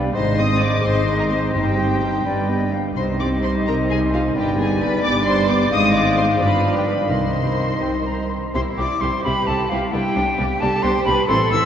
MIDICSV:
0, 0, Header, 1, 11, 480
1, 0, Start_track
1, 0, Key_signature, -3, "minor"
1, 0, Tempo, 468750
1, 147, Time_signature, 6, 3, 24, 8
1, 3993, Tempo, 454545
1, 6873, Tempo, 477707
1, 8803, Key_signature, 0, "major"
1, 9273, Tempo, 455581
1, 12052, End_track
2, 0, Start_track
2, 0, Title_t, "Violin section"
2, 0, Program_c, 0, 48
2, 149, Note_on_c, 0, 84, 78
2, 366, Note_off_c, 0, 84, 0
2, 384, Note_on_c, 0, 87, 75
2, 616, Note_on_c, 0, 86, 72
2, 619, Note_off_c, 0, 87, 0
2, 855, Note_off_c, 0, 86, 0
2, 861, Note_on_c, 0, 84, 72
2, 1216, Note_off_c, 0, 84, 0
2, 1224, Note_on_c, 0, 82, 68
2, 1270, Note_off_c, 0, 82, 0
2, 1324, Note_on_c, 0, 84, 67
2, 1406, Note_off_c, 0, 84, 0
2, 1564, Note_on_c, 0, 79, 60
2, 2758, Note_off_c, 0, 79, 0
2, 3030, Note_on_c, 0, 84, 58
2, 3111, Note_off_c, 0, 84, 0
2, 3271, Note_on_c, 0, 86, 60
2, 3353, Note_off_c, 0, 86, 0
2, 3509, Note_on_c, 0, 84, 64
2, 3591, Note_off_c, 0, 84, 0
2, 3746, Note_on_c, 0, 82, 69
2, 3828, Note_off_c, 0, 82, 0
2, 3997, Note_on_c, 0, 80, 66
2, 4082, Note_off_c, 0, 80, 0
2, 4241, Note_on_c, 0, 77, 59
2, 4326, Note_off_c, 0, 77, 0
2, 4486, Note_on_c, 0, 79, 76
2, 4718, Note_off_c, 0, 79, 0
2, 4728, Note_on_c, 0, 80, 65
2, 4956, Note_on_c, 0, 83, 74
2, 4959, Note_off_c, 0, 80, 0
2, 5192, Note_on_c, 0, 86, 92
2, 5198, Note_off_c, 0, 83, 0
2, 5429, Note_off_c, 0, 86, 0
2, 5433, Note_on_c, 0, 84, 79
2, 5666, Note_off_c, 0, 84, 0
2, 5678, Note_on_c, 0, 86, 79
2, 5911, Note_off_c, 0, 86, 0
2, 5928, Note_on_c, 0, 87, 92
2, 6149, Note_on_c, 0, 86, 74
2, 6153, Note_off_c, 0, 87, 0
2, 6385, Note_off_c, 0, 86, 0
2, 6393, Note_on_c, 0, 84, 71
2, 6477, Note_off_c, 0, 84, 0
2, 6643, Note_on_c, 0, 83, 72
2, 6990, Note_off_c, 0, 83, 0
2, 7007, Note_on_c, 0, 79, 57
2, 7114, Note_off_c, 0, 79, 0
2, 7119, Note_on_c, 0, 83, 56
2, 7347, Note_off_c, 0, 83, 0
2, 7360, Note_on_c, 0, 84, 52
2, 8567, Note_off_c, 0, 84, 0
2, 8800, Note_on_c, 0, 72, 66
2, 8880, Note_off_c, 0, 72, 0
2, 9033, Note_on_c, 0, 74, 63
2, 9262, Note_on_c, 0, 72, 60
2, 9266, Note_off_c, 0, 74, 0
2, 9506, Note_off_c, 0, 72, 0
2, 9516, Note_on_c, 0, 71, 70
2, 9750, Note_on_c, 0, 69, 66
2, 9755, Note_off_c, 0, 71, 0
2, 9995, Note_on_c, 0, 65, 64
2, 9997, Note_off_c, 0, 69, 0
2, 10079, Note_off_c, 0, 65, 0
2, 10247, Note_on_c, 0, 67, 70
2, 10945, Note_off_c, 0, 67, 0
2, 10953, Note_on_c, 0, 69, 76
2, 11184, Note_on_c, 0, 72, 78
2, 11193, Note_off_c, 0, 69, 0
2, 11427, Note_off_c, 0, 72, 0
2, 11433, Note_on_c, 0, 71, 76
2, 11666, Note_off_c, 0, 71, 0
2, 11668, Note_on_c, 0, 72, 87
2, 11752, Note_off_c, 0, 72, 0
2, 11905, Note_on_c, 0, 76, 75
2, 12052, Note_off_c, 0, 76, 0
2, 12052, End_track
3, 0, Start_track
3, 0, Title_t, "Flute"
3, 0, Program_c, 1, 73
3, 0, Note_on_c, 1, 74, 42
3, 140, Note_off_c, 1, 74, 0
3, 146, Note_on_c, 1, 75, 58
3, 2024, Note_off_c, 1, 75, 0
3, 2303, Note_on_c, 1, 74, 48
3, 2546, Note_on_c, 1, 75, 43
3, 2561, Note_off_c, 1, 74, 0
3, 2788, Note_on_c, 1, 77, 38
3, 2804, Note_off_c, 1, 75, 0
3, 3024, Note_off_c, 1, 77, 0
3, 3030, Note_on_c, 1, 75, 44
3, 4472, Note_on_c, 1, 74, 56
3, 4488, Note_off_c, 1, 75, 0
3, 5906, Note_off_c, 1, 74, 0
3, 5916, Note_on_c, 1, 75, 56
3, 6629, Note_on_c, 1, 77, 46
3, 6644, Note_off_c, 1, 75, 0
3, 7352, Note_on_c, 1, 75, 38
3, 7367, Note_off_c, 1, 77, 0
3, 8563, Note_off_c, 1, 75, 0
3, 8803, Note_on_c, 1, 84, 78
3, 8864, Note_off_c, 1, 84, 0
3, 9034, Note_on_c, 1, 86, 74
3, 9269, Note_on_c, 1, 84, 67
3, 9284, Note_off_c, 1, 86, 0
3, 9505, Note_off_c, 1, 84, 0
3, 9511, Note_on_c, 1, 83, 80
3, 9753, Note_on_c, 1, 81, 76
3, 9769, Note_off_c, 1, 83, 0
3, 9988, Note_on_c, 1, 77, 68
3, 10003, Note_off_c, 1, 81, 0
3, 10228, Note_on_c, 1, 79, 82
3, 10244, Note_off_c, 1, 77, 0
3, 10949, Note_on_c, 1, 81, 83
3, 10965, Note_off_c, 1, 79, 0
3, 11180, Note_on_c, 1, 84, 85
3, 11196, Note_off_c, 1, 81, 0
3, 11409, Note_off_c, 1, 84, 0
3, 11415, Note_on_c, 1, 83, 87
3, 11652, Note_off_c, 1, 83, 0
3, 11658, Note_on_c, 1, 84, 104
3, 11900, Note_off_c, 1, 84, 0
3, 11907, Note_on_c, 1, 88, 93
3, 12052, Note_off_c, 1, 88, 0
3, 12052, End_track
4, 0, Start_track
4, 0, Title_t, "Clarinet"
4, 0, Program_c, 2, 71
4, 0, Note_on_c, 2, 77, 52
4, 144, Note_off_c, 2, 77, 0
4, 157, Note_on_c, 2, 75, 61
4, 1550, Note_off_c, 2, 75, 0
4, 1575, Note_on_c, 2, 79, 50
4, 2644, Note_off_c, 2, 79, 0
4, 3754, Note_on_c, 2, 75, 51
4, 4482, Note_on_c, 2, 74, 58
4, 4498, Note_off_c, 2, 75, 0
4, 5197, Note_off_c, 2, 74, 0
4, 5204, Note_on_c, 2, 74, 59
4, 5897, Note_off_c, 2, 74, 0
4, 5909, Note_on_c, 2, 77, 80
4, 7359, Note_on_c, 2, 75, 46
4, 7374, Note_off_c, 2, 77, 0
4, 8030, Note_off_c, 2, 75, 0
4, 8073, Note_on_c, 2, 79, 41
4, 8182, Note_off_c, 2, 79, 0
4, 8314, Note_on_c, 2, 82, 41
4, 8555, Note_on_c, 2, 84, 36
4, 8570, Note_off_c, 2, 82, 0
4, 8800, Note_off_c, 2, 84, 0
4, 12052, End_track
5, 0, Start_track
5, 0, Title_t, "Cor anglais"
5, 0, Program_c, 3, 69
5, 0, Note_on_c, 3, 71, 44
5, 132, Note_off_c, 3, 71, 0
5, 138, Note_on_c, 3, 72, 53
5, 2316, Note_on_c, 3, 71, 41
5, 2331, Note_off_c, 3, 72, 0
5, 2794, Note_off_c, 3, 71, 0
5, 3036, Note_on_c, 3, 72, 44
5, 4440, Note_off_c, 3, 72, 0
5, 4479, Note_on_c, 3, 71, 51
5, 5881, Note_off_c, 3, 71, 0
5, 5908, Note_on_c, 3, 72, 55
5, 6589, Note_off_c, 3, 72, 0
5, 6620, Note_on_c, 3, 74, 49
5, 7327, Note_off_c, 3, 74, 0
5, 7347, Note_on_c, 3, 72, 36
5, 8536, Note_off_c, 3, 72, 0
5, 12052, End_track
6, 0, Start_track
6, 0, Title_t, "Violin section"
6, 0, Program_c, 4, 48
6, 139, Note_on_c, 4, 72, 68
6, 361, Note_off_c, 4, 72, 0
6, 392, Note_on_c, 4, 75, 67
6, 614, Note_on_c, 4, 74, 61
6, 624, Note_off_c, 4, 75, 0
6, 848, Note_on_c, 4, 72, 68
6, 854, Note_off_c, 4, 74, 0
6, 1202, Note_off_c, 4, 72, 0
6, 1209, Note_on_c, 4, 70, 56
6, 1258, Note_off_c, 4, 70, 0
6, 1337, Note_on_c, 4, 72, 57
6, 1570, Note_off_c, 4, 72, 0
6, 1570, Note_on_c, 4, 67, 48
6, 2761, Note_off_c, 4, 67, 0
6, 3023, Note_on_c, 4, 72, 51
6, 3251, Note_off_c, 4, 72, 0
6, 3275, Note_on_c, 4, 74, 47
6, 3357, Note_off_c, 4, 74, 0
6, 3522, Note_on_c, 4, 72, 50
6, 3604, Note_off_c, 4, 72, 0
6, 3766, Note_on_c, 4, 70, 59
6, 3848, Note_off_c, 4, 70, 0
6, 3997, Note_on_c, 4, 68, 58
6, 4081, Note_off_c, 4, 68, 0
6, 4243, Note_on_c, 4, 65, 52
6, 4328, Note_off_c, 4, 65, 0
6, 4473, Note_on_c, 4, 67, 58
6, 4710, Note_on_c, 4, 68, 57
6, 4711, Note_off_c, 4, 67, 0
6, 4947, Note_on_c, 4, 71, 63
6, 4950, Note_off_c, 4, 68, 0
6, 5188, Note_off_c, 4, 71, 0
6, 5189, Note_on_c, 4, 74, 82
6, 5274, Note_off_c, 4, 74, 0
6, 5435, Note_on_c, 4, 72, 69
6, 5667, Note_off_c, 4, 72, 0
6, 5683, Note_on_c, 4, 74, 63
6, 5909, Note_on_c, 4, 75, 74
6, 5914, Note_off_c, 4, 74, 0
6, 6143, Note_off_c, 4, 75, 0
6, 6148, Note_on_c, 4, 74, 67
6, 6383, Note_on_c, 4, 72, 60
6, 6389, Note_off_c, 4, 74, 0
6, 6628, Note_off_c, 4, 72, 0
6, 6631, Note_on_c, 4, 71, 62
6, 6987, Note_on_c, 4, 67, 46
6, 6991, Note_off_c, 4, 71, 0
6, 7107, Note_off_c, 4, 67, 0
6, 7108, Note_on_c, 4, 71, 47
6, 7188, Note_off_c, 4, 71, 0
6, 7355, Note_on_c, 4, 72, 45
6, 8540, Note_off_c, 4, 72, 0
6, 8803, Note_on_c, 4, 67, 45
6, 8804, Note_on_c, 4, 64, 49
6, 8884, Note_off_c, 4, 64, 0
6, 8884, Note_off_c, 4, 67, 0
6, 9037, Note_on_c, 4, 64, 45
6, 9037, Note_on_c, 4, 67, 46
6, 9117, Note_off_c, 4, 64, 0
6, 9117, Note_off_c, 4, 67, 0
6, 9279, Note_on_c, 4, 64, 47
6, 9283, Note_on_c, 4, 67, 44
6, 9363, Note_off_c, 4, 64, 0
6, 9367, Note_off_c, 4, 67, 0
6, 9532, Note_on_c, 4, 64, 54
6, 9534, Note_on_c, 4, 67, 52
6, 9617, Note_off_c, 4, 64, 0
6, 9618, Note_off_c, 4, 67, 0
6, 9759, Note_on_c, 4, 64, 51
6, 9763, Note_on_c, 4, 67, 48
6, 9844, Note_off_c, 4, 64, 0
6, 9847, Note_off_c, 4, 67, 0
6, 10007, Note_on_c, 4, 64, 49
6, 10011, Note_on_c, 4, 67, 49
6, 10092, Note_off_c, 4, 64, 0
6, 10095, Note_off_c, 4, 67, 0
6, 10241, Note_on_c, 4, 62, 52
6, 10244, Note_on_c, 4, 67, 54
6, 10325, Note_off_c, 4, 62, 0
6, 10328, Note_off_c, 4, 67, 0
6, 10479, Note_on_c, 4, 62, 54
6, 10482, Note_on_c, 4, 67, 47
6, 10564, Note_off_c, 4, 62, 0
6, 10566, Note_off_c, 4, 67, 0
6, 10722, Note_on_c, 4, 62, 50
6, 10726, Note_on_c, 4, 67, 52
6, 10806, Note_off_c, 4, 62, 0
6, 10810, Note_off_c, 4, 67, 0
6, 10956, Note_on_c, 4, 62, 59
6, 10958, Note_on_c, 4, 67, 61
6, 11040, Note_off_c, 4, 62, 0
6, 11042, Note_off_c, 4, 67, 0
6, 11184, Note_on_c, 4, 62, 57
6, 11190, Note_on_c, 4, 67, 60
6, 11268, Note_off_c, 4, 62, 0
6, 11274, Note_off_c, 4, 67, 0
6, 11431, Note_on_c, 4, 67, 56
6, 11435, Note_on_c, 4, 62, 56
6, 11516, Note_off_c, 4, 67, 0
6, 11519, Note_off_c, 4, 62, 0
6, 11669, Note_on_c, 4, 69, 63
6, 11671, Note_on_c, 4, 64, 59
6, 11753, Note_off_c, 4, 69, 0
6, 11755, Note_off_c, 4, 64, 0
6, 11909, Note_on_c, 4, 69, 57
6, 11917, Note_on_c, 4, 64, 56
6, 11993, Note_off_c, 4, 69, 0
6, 12001, Note_off_c, 4, 64, 0
6, 12052, End_track
7, 0, Start_track
7, 0, Title_t, "French horn section"
7, 0, Program_c, 5, 60
7, 0, Note_on_c, 5, 59, 47
7, 0, Note_on_c, 5, 62, 48
7, 121, Note_off_c, 5, 62, 0
7, 122, Note_off_c, 5, 59, 0
7, 160, Note_on_c, 5, 60, 57
7, 167, Note_on_c, 5, 63, 57
7, 830, Note_off_c, 5, 63, 0
7, 840, Note_off_c, 5, 60, 0
7, 843, Note_on_c, 5, 63, 57
7, 852, Note_on_c, 5, 60, 56
7, 1551, Note_off_c, 5, 60, 0
7, 1552, Note_off_c, 5, 63, 0
7, 1563, Note_on_c, 5, 60, 49
7, 1565, Note_on_c, 5, 63, 51
7, 2281, Note_off_c, 5, 60, 0
7, 2282, Note_off_c, 5, 63, 0
7, 2289, Note_on_c, 5, 59, 45
7, 2289, Note_on_c, 5, 62, 47
7, 2781, Note_off_c, 5, 59, 0
7, 2781, Note_off_c, 5, 62, 0
7, 3010, Note_on_c, 5, 60, 46
7, 3010, Note_on_c, 5, 63, 45
7, 4426, Note_off_c, 5, 60, 0
7, 4489, Note_on_c, 5, 59, 55
7, 5147, Note_off_c, 5, 63, 0
7, 5186, Note_on_c, 5, 62, 60
7, 5885, Note_off_c, 5, 59, 0
7, 5901, Note_on_c, 5, 63, 62
7, 5902, Note_off_c, 5, 62, 0
7, 5903, Note_on_c, 5, 60, 60
7, 6585, Note_off_c, 5, 63, 0
7, 6586, Note_off_c, 5, 60, 0
7, 6632, Note_on_c, 5, 65, 55
7, 6636, Note_on_c, 5, 62, 53
7, 7334, Note_off_c, 5, 65, 0
7, 7350, Note_off_c, 5, 62, 0
7, 7351, Note_on_c, 5, 63, 41
7, 7353, Note_on_c, 5, 60, 41
7, 8563, Note_off_c, 5, 63, 0
7, 8564, Note_off_c, 5, 60, 0
7, 12052, End_track
8, 0, Start_track
8, 0, Title_t, "Viola section"
8, 0, Program_c, 6, 48
8, 0, Note_on_c, 6, 59, 42
8, 0, Note_on_c, 6, 67, 42
8, 142, Note_on_c, 6, 63, 50
8, 146, Note_off_c, 6, 59, 0
8, 146, Note_on_c, 6, 56, 52
8, 147, Note_off_c, 6, 67, 0
8, 362, Note_off_c, 6, 63, 0
8, 364, Note_off_c, 6, 56, 0
8, 380, Note_on_c, 6, 68, 44
8, 382, Note_on_c, 6, 60, 45
8, 617, Note_off_c, 6, 68, 0
8, 618, Note_off_c, 6, 60, 0
8, 622, Note_on_c, 6, 56, 51
8, 622, Note_on_c, 6, 63, 46
8, 853, Note_on_c, 6, 60, 52
8, 856, Note_on_c, 6, 68, 49
8, 858, Note_off_c, 6, 56, 0
8, 858, Note_off_c, 6, 63, 0
8, 1092, Note_off_c, 6, 60, 0
8, 1094, Note_off_c, 6, 68, 0
8, 1094, Note_on_c, 6, 63, 43
8, 1099, Note_on_c, 6, 56, 45
8, 1316, Note_off_c, 6, 63, 0
8, 1319, Note_off_c, 6, 56, 0
8, 1333, Note_on_c, 6, 68, 39
8, 1335, Note_on_c, 6, 60, 40
8, 1573, Note_off_c, 6, 68, 0
8, 1573, Note_on_c, 6, 55, 46
8, 1573, Note_on_c, 6, 63, 47
8, 1574, Note_off_c, 6, 60, 0
8, 1798, Note_off_c, 6, 55, 0
8, 1798, Note_off_c, 6, 63, 0
8, 1808, Note_on_c, 6, 60, 41
8, 1810, Note_on_c, 6, 67, 39
8, 2051, Note_on_c, 6, 55, 39
8, 2053, Note_on_c, 6, 63, 36
8, 2054, Note_off_c, 6, 60, 0
8, 2055, Note_off_c, 6, 67, 0
8, 2288, Note_off_c, 6, 55, 0
8, 2298, Note_off_c, 6, 63, 0
8, 2300, Note_on_c, 6, 55, 39
8, 2304, Note_on_c, 6, 62, 41
8, 2526, Note_off_c, 6, 55, 0
8, 2528, Note_off_c, 6, 62, 0
8, 2543, Note_on_c, 6, 67, 36
8, 2544, Note_on_c, 6, 59, 35
8, 2776, Note_on_c, 6, 62, 35
8, 2778, Note_on_c, 6, 55, 34
8, 2786, Note_off_c, 6, 67, 0
8, 2787, Note_off_c, 6, 59, 0
8, 3006, Note_off_c, 6, 55, 0
8, 3018, Note_on_c, 6, 55, 40
8, 3024, Note_off_c, 6, 62, 0
8, 3025, Note_on_c, 6, 63, 45
8, 3249, Note_off_c, 6, 55, 0
8, 3252, Note_off_c, 6, 63, 0
8, 3260, Note_on_c, 6, 60, 39
8, 3264, Note_on_c, 6, 67, 37
8, 3507, Note_on_c, 6, 55, 42
8, 3507, Note_on_c, 6, 63, 37
8, 3509, Note_off_c, 6, 60, 0
8, 3511, Note_off_c, 6, 67, 0
8, 3752, Note_off_c, 6, 55, 0
8, 3752, Note_off_c, 6, 63, 0
8, 3753, Note_on_c, 6, 67, 47
8, 3754, Note_on_c, 6, 60, 41
8, 3992, Note_off_c, 6, 67, 0
8, 3993, Note_off_c, 6, 60, 0
8, 4005, Note_on_c, 6, 55, 43
8, 4005, Note_on_c, 6, 63, 40
8, 4226, Note_off_c, 6, 55, 0
8, 4226, Note_off_c, 6, 63, 0
8, 4240, Note_on_c, 6, 60, 44
8, 4240, Note_on_c, 6, 67, 44
8, 4475, Note_on_c, 6, 62, 53
8, 4477, Note_on_c, 6, 55, 50
8, 4480, Note_off_c, 6, 60, 0
8, 4480, Note_off_c, 6, 67, 0
8, 4700, Note_off_c, 6, 62, 0
8, 4701, Note_off_c, 6, 55, 0
8, 4723, Note_on_c, 6, 67, 49
8, 4725, Note_on_c, 6, 59, 46
8, 4961, Note_off_c, 6, 67, 0
8, 4962, Note_off_c, 6, 59, 0
8, 4965, Note_on_c, 6, 62, 49
8, 4966, Note_on_c, 6, 55, 50
8, 5198, Note_on_c, 6, 59, 57
8, 5198, Note_on_c, 6, 67, 55
8, 5202, Note_off_c, 6, 62, 0
8, 5203, Note_off_c, 6, 55, 0
8, 5424, Note_on_c, 6, 62, 51
8, 5427, Note_on_c, 6, 55, 50
8, 5436, Note_off_c, 6, 59, 0
8, 5436, Note_off_c, 6, 67, 0
8, 5649, Note_off_c, 6, 62, 0
8, 5651, Note_off_c, 6, 55, 0
8, 5664, Note_on_c, 6, 59, 49
8, 5666, Note_on_c, 6, 67, 49
8, 5900, Note_on_c, 6, 60, 63
8, 5905, Note_off_c, 6, 59, 0
8, 5905, Note_on_c, 6, 56, 62
8, 5906, Note_off_c, 6, 67, 0
8, 6585, Note_off_c, 6, 60, 0
8, 6587, Note_off_c, 6, 56, 0
8, 6621, Note_on_c, 6, 62, 56
8, 6622, Note_on_c, 6, 53, 52
8, 7342, Note_off_c, 6, 62, 0
8, 7342, Note_on_c, 6, 63, 43
8, 7343, Note_off_c, 6, 53, 0
8, 7345, Note_on_c, 6, 51, 42
8, 8569, Note_off_c, 6, 51, 0
8, 8593, Note_off_c, 6, 63, 0
8, 8803, Note_on_c, 6, 55, 55
8, 8803, Note_on_c, 6, 60, 55
8, 8883, Note_off_c, 6, 60, 0
8, 8884, Note_off_c, 6, 55, 0
8, 9037, Note_on_c, 6, 55, 46
8, 9039, Note_on_c, 6, 60, 46
8, 9118, Note_off_c, 6, 55, 0
8, 9119, Note_off_c, 6, 60, 0
8, 9268, Note_on_c, 6, 55, 49
8, 9269, Note_on_c, 6, 60, 47
8, 9352, Note_off_c, 6, 55, 0
8, 9353, Note_off_c, 6, 60, 0
8, 9515, Note_on_c, 6, 55, 54
8, 9517, Note_on_c, 6, 60, 52
8, 9599, Note_off_c, 6, 55, 0
8, 9601, Note_off_c, 6, 60, 0
8, 9753, Note_on_c, 6, 55, 43
8, 9753, Note_on_c, 6, 60, 47
8, 9837, Note_off_c, 6, 55, 0
8, 9838, Note_off_c, 6, 60, 0
8, 10000, Note_on_c, 6, 55, 48
8, 10002, Note_on_c, 6, 60, 49
8, 10085, Note_off_c, 6, 55, 0
8, 10086, Note_off_c, 6, 60, 0
8, 10236, Note_on_c, 6, 55, 55
8, 10237, Note_on_c, 6, 59, 55
8, 10320, Note_off_c, 6, 55, 0
8, 10321, Note_off_c, 6, 59, 0
8, 10470, Note_on_c, 6, 55, 49
8, 10475, Note_on_c, 6, 59, 51
8, 10555, Note_off_c, 6, 55, 0
8, 10559, Note_off_c, 6, 59, 0
8, 10711, Note_on_c, 6, 59, 51
8, 10714, Note_on_c, 6, 55, 51
8, 10795, Note_off_c, 6, 59, 0
8, 10798, Note_off_c, 6, 55, 0
8, 10946, Note_on_c, 6, 59, 62
8, 10949, Note_on_c, 6, 55, 60
8, 11030, Note_off_c, 6, 59, 0
8, 11033, Note_off_c, 6, 55, 0
8, 11189, Note_on_c, 6, 55, 54
8, 11190, Note_on_c, 6, 59, 54
8, 11273, Note_off_c, 6, 55, 0
8, 11274, Note_off_c, 6, 59, 0
8, 11425, Note_on_c, 6, 55, 57
8, 11426, Note_on_c, 6, 59, 57
8, 11510, Note_off_c, 6, 55, 0
8, 11510, Note_off_c, 6, 59, 0
8, 11669, Note_on_c, 6, 52, 71
8, 11670, Note_on_c, 6, 60, 70
8, 11754, Note_off_c, 6, 52, 0
8, 11754, Note_off_c, 6, 60, 0
8, 11905, Note_on_c, 6, 60, 57
8, 11908, Note_on_c, 6, 52, 59
8, 11989, Note_off_c, 6, 60, 0
8, 11992, Note_off_c, 6, 52, 0
8, 12052, End_track
9, 0, Start_track
9, 0, Title_t, "Cello section"
9, 0, Program_c, 7, 48
9, 152, Note_on_c, 7, 44, 57
9, 774, Note_off_c, 7, 44, 0
9, 862, Note_on_c, 7, 44, 64
9, 1491, Note_off_c, 7, 44, 0
9, 1573, Note_on_c, 7, 43, 53
9, 2215, Note_off_c, 7, 43, 0
9, 2298, Note_on_c, 7, 43, 45
9, 2942, Note_off_c, 7, 43, 0
9, 3023, Note_on_c, 7, 48, 50
9, 3668, Note_off_c, 7, 48, 0
9, 3752, Note_on_c, 7, 48, 52
9, 4391, Note_off_c, 7, 48, 0
9, 4475, Note_on_c, 7, 43, 63
9, 5113, Note_off_c, 7, 43, 0
9, 5195, Note_on_c, 7, 43, 62
9, 5823, Note_off_c, 7, 43, 0
9, 5902, Note_on_c, 7, 44, 58
9, 6586, Note_off_c, 7, 44, 0
9, 6629, Note_on_c, 7, 43, 52
9, 7344, Note_on_c, 7, 48, 43
9, 7346, Note_off_c, 7, 43, 0
9, 8594, Note_off_c, 7, 48, 0
9, 8807, Note_on_c, 7, 64, 54
9, 9477, Note_off_c, 7, 64, 0
9, 9515, Note_on_c, 7, 67, 58
9, 10227, Note_off_c, 7, 67, 0
9, 10242, Note_on_c, 7, 64, 68
9, 10472, Note_on_c, 7, 62, 55
9, 10476, Note_off_c, 7, 64, 0
9, 10712, Note_on_c, 7, 67, 69
9, 10714, Note_off_c, 7, 62, 0
9, 11648, Note_off_c, 7, 67, 0
9, 11666, Note_on_c, 7, 69, 82
9, 12052, Note_off_c, 7, 69, 0
9, 12052, End_track
10, 0, Start_track
10, 0, Title_t, "Timpani"
10, 0, Program_c, 8, 47
10, 1577, Note_on_c, 8, 43, 53
10, 2262, Note_off_c, 8, 43, 0
10, 3032, Note_on_c, 8, 48, 54
10, 3717, Note_off_c, 8, 48, 0
10, 7350, Note_on_c, 8, 48, 55
10, 8034, Note_off_c, 8, 48, 0
10, 12052, End_track
11, 0, Start_track
11, 0, Title_t, "Double bass section"
11, 0, Program_c, 10, 48
11, 151, Note_on_c, 10, 32, 65
11, 774, Note_off_c, 10, 32, 0
11, 859, Note_on_c, 10, 32, 61
11, 1490, Note_off_c, 10, 32, 0
11, 1579, Note_on_c, 10, 31, 55
11, 2217, Note_off_c, 10, 31, 0
11, 2302, Note_on_c, 10, 31, 45
11, 2945, Note_off_c, 10, 31, 0
11, 3032, Note_on_c, 10, 36, 52
11, 3672, Note_off_c, 10, 36, 0
11, 3757, Note_on_c, 10, 36, 51
11, 4393, Note_off_c, 10, 36, 0
11, 4480, Note_on_c, 10, 31, 61
11, 5115, Note_off_c, 10, 31, 0
11, 5200, Note_on_c, 10, 31, 61
11, 5825, Note_off_c, 10, 31, 0
11, 5911, Note_on_c, 10, 32, 60
11, 6590, Note_off_c, 10, 32, 0
11, 6635, Note_on_c, 10, 31, 53
11, 7349, Note_off_c, 10, 31, 0
11, 7356, Note_on_c, 10, 36, 44
11, 8600, Note_off_c, 10, 36, 0
11, 8804, Note_on_c, 10, 36, 59
11, 8885, Note_off_c, 10, 36, 0
11, 9045, Note_on_c, 10, 36, 50
11, 9125, Note_off_c, 10, 36, 0
11, 9279, Note_on_c, 10, 36, 57
11, 9363, Note_off_c, 10, 36, 0
11, 9526, Note_on_c, 10, 36, 59
11, 9610, Note_off_c, 10, 36, 0
11, 9763, Note_on_c, 10, 36, 55
11, 9847, Note_off_c, 10, 36, 0
11, 10003, Note_on_c, 10, 36, 57
11, 10087, Note_off_c, 10, 36, 0
11, 10247, Note_on_c, 10, 36, 66
11, 10331, Note_off_c, 10, 36, 0
11, 10481, Note_on_c, 10, 36, 54
11, 10565, Note_off_c, 10, 36, 0
11, 10719, Note_on_c, 10, 36, 63
11, 10803, Note_off_c, 10, 36, 0
11, 10956, Note_on_c, 10, 36, 68
11, 11040, Note_off_c, 10, 36, 0
11, 11189, Note_on_c, 10, 36, 62
11, 11274, Note_off_c, 10, 36, 0
11, 11432, Note_on_c, 10, 36, 66
11, 11516, Note_off_c, 10, 36, 0
11, 11665, Note_on_c, 10, 33, 78
11, 11750, Note_off_c, 10, 33, 0
11, 11904, Note_on_c, 10, 33, 66
11, 11989, Note_off_c, 10, 33, 0
11, 12052, End_track
0, 0, End_of_file